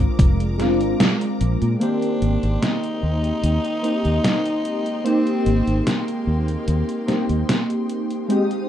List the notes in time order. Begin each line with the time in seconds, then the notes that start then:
Already playing: G#3 C4 D4 F4 A#4 A#5 D6
0.00 closed hi-hat
0.19 F1, kick, closed hi-hat
0.40 closed hi-hat
0.58 G#3 C4 D4 F4, snare, closed hi-hat
0.81 G#1, closed hi-hat
1.00 snare, closed hi-hat
1.21 closed hi-hat
1.41 A#1, closed hi-hat
1.62 A#2, closed hi-hat
1.79 D#3 G#3 A#3 C4 D4 G4 G5 C6, closed hi-hat
2.02 closed hi-hat
2.22 G#1, closed hi-hat
2.43 G#1, closed hi-hat
2.62 D#4, snare, closed hi-hat
2.84 closed hi-hat
3.03 D#2
3.24 closed hi-hat
3.43 D#2, closed hi-hat
3.65 closed hi-hat
3.82 A#3 C4 D#4 G4, closed hi-hat
4.05 D#2, closed hi-hat
4.24 snare, closed hi-hat
4.45 closed hi-hat
4.65 closed hi-hat
4.86 closed hi-hat
5.04 A#3 C4 D#4 G4, closed hi-hat
5.27 closed hi-hat
5.46 G#1, closed hi-hat
5.67 G#1, closed hi-hat
5.86 A#3, snare, closed hi-hat
6.08 closed hi-hat
6.27 D#2
6.48 closed hi-hat
6.68 D#2, closed hi-hat
6.89 closed hi-hat
7.06 A#3 C4 D#4 G4, snare, closed hi-hat
7.29 D#2, closed hi-hat
7.49 snare, closed hi-hat
7.70 closed hi-hat
7.89 closed hi-hat
8.11 closed hi-hat
8.28 G#3 C4 D#4 G4 F5 D#6, closed hi-hat
8.51 closed hi-hat